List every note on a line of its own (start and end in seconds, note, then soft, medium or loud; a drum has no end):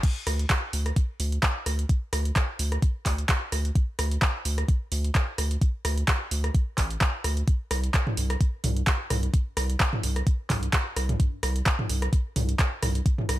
0.03 kick loud
0.03 closed hi-hat medium
0.03 crash medium
0.27 0.46 D2 loud
0.27 cross-stick medium
0.27 open hi-hat loud
0.39 closed hi-hat medium
0.50 kick loud
0.50 clap loud
0.50 closed hi-hat medium
0.73 0.92 D2 medium
0.73 open hi-hat loud
0.86 cross-stick medium
0.86 closed hi-hat medium
0.96 kick loud
0.96 closed hi-hat medium
1.20 1.39 D2 loud
1.20 open hi-hat loud
1.32 closed hi-hat medium
1.43 kick loud
1.43 clap loud
1.43 closed hi-hat medium
1.66 1.85 D2 medium
1.66 cross-stick medium
1.66 open hi-hat loud
1.79 closed hi-hat medium
1.89 kick loud
1.89 closed hi-hat medium
2.13 2.32 D2 loud
2.13 cross-stick medium
2.13 open hi-hat loud
2.25 closed hi-hat medium
2.36 kick loud
2.36 clap loud
2.36 closed hi-hat medium
2.59 2.78 D2 medium
2.59 open hi-hat loud
2.72 cross-stick medium
2.72 closed hi-hat medium
2.82 kick loud
2.82 closed hi-hat medium
3.06 3.25 D2 medium
3.06 kick medium
3.06 clap medium
3.06 open hi-hat loud
3.18 closed hi-hat medium
3.29 kick loud
3.29 clap loud
3.29 closed hi-hat medium
3.52 3.71 D2 medium
3.52 cross-stick medium
3.52 open hi-hat loud
3.65 closed hi-hat medium
3.75 kick loud
3.75 closed hi-hat medium
3.99 4.18 D2 loud
3.99 cross-stick medium
3.99 open hi-hat loud
4.11 closed hi-hat medium
4.22 kick loud
4.22 clap loud
4.22 closed hi-hat medium
4.45 4.64 D2 medium
4.45 open hi-hat loud
4.58 cross-stick medium
4.58 closed hi-hat medium
4.68 kick loud
4.68 closed hi-hat medium
4.92 5.11 D2 loud
4.92 open hi-hat loud
5.04 closed hi-hat soft
5.15 kick loud
5.15 clap loud
5.15 closed hi-hat medium
5.38 5.57 D2 medium
5.38 cross-stick medium
5.38 open hi-hat loud
5.51 closed hi-hat medium
5.62 kick loud
5.62 closed hi-hat medium
5.85 6.04 D2 loud
5.85 cross-stick medium
5.85 open hi-hat loud
5.98 closed hi-hat medium
6.08 kick loud
6.08 clap loud
6.08 closed hi-hat medium
6.31 6.50 D2 medium
6.31 open hi-hat loud
6.44 cross-stick medium
6.44 closed hi-hat soft
6.55 kick loud
6.55 closed hi-hat medium
6.78 6.97 A1 medium
6.78 kick medium
6.78 clap medium
6.78 open hi-hat loud
6.90 closed hi-hat soft
7.01 kick loud
7.01 clap loud
7.01 closed hi-hat medium
7.24 7.43 D2 medium
7.24 cross-stick medium
7.24 open hi-hat loud
7.37 closed hi-hat soft
7.48 kick loud
7.48 closed hi-hat medium
7.71 7.90 C2 loud
7.71 cross-stick medium
7.71 open hi-hat loud
7.84 closed hi-hat medium
7.94 kick loud
7.94 clap loud
7.94 closed hi-hat medium
8.07 mid tom medium
8.17 8.36 C2 medium
8.17 open hi-hat loud
8.30 cross-stick medium
8.30 closed hi-hat medium
8.41 kick loud
8.41 closed hi-hat medium
8.64 8.83 C2 loud
8.64 mid tom medium
8.64 open hi-hat loud
8.77 closed hi-hat soft
8.87 kick loud
8.87 clap loud
8.87 closed hi-hat medium
9.10 9.29 C2 medium
9.10 cross-stick medium
9.10 mid tom medium
9.10 open hi-hat loud
9.23 closed hi-hat soft
9.34 kick loud
9.34 closed hi-hat medium
9.57 9.76 C2 loud
9.57 cross-stick medium
9.57 open hi-hat loud
9.70 closed hi-hat medium
9.80 kick loud
9.80 clap loud
9.80 closed hi-hat medium
9.93 mid tom medium
10.03 10.22 C2 medium
10.03 open hi-hat loud
10.16 cross-stick medium
10.16 closed hi-hat medium
10.27 kick loud
10.27 closed hi-hat medium
10.50 10.69 C2 loud
10.50 kick medium
10.50 clap medium
10.50 mid tom medium
10.50 open hi-hat loud
10.63 closed hi-hat soft
10.73 kick loud
10.73 clap loud
10.73 closed hi-hat medium
10.96 11.15 C2 medium
10.96 cross-stick medium
10.96 open hi-hat loud
11.09 closed hi-hat soft
11.09 mid tom medium
11.20 kick loud
11.20 closed hi-hat medium
11.43 11.62 C2 loud
11.43 cross-stick medium
11.43 open hi-hat loud
11.56 closed hi-hat medium
11.66 kick loud
11.66 clap loud
11.66 closed hi-hat medium
11.79 mid tom medium
11.89 12.08 C2 medium
11.89 open hi-hat loud
12.02 cross-stick medium
12.02 closed hi-hat medium
12.13 kick loud
12.13 closed hi-hat medium
12.36 12.55 C2 loud
12.36 mid tom medium
12.36 open hi-hat loud
12.49 closed hi-hat medium
12.59 kick loud
12.59 clap loud
12.59 closed hi-hat medium
12.83 13.01 C2 medium
12.83 cross-stick medium
12.83 mid tom medium
12.83 open hi-hat loud
12.95 closed hi-hat medium
13.06 kick loud
13.06 closed hi-hat medium
13.18 mid tom medium
13.29 13.39 C2 loud
13.29 cross-stick medium
13.29 open hi-hat loud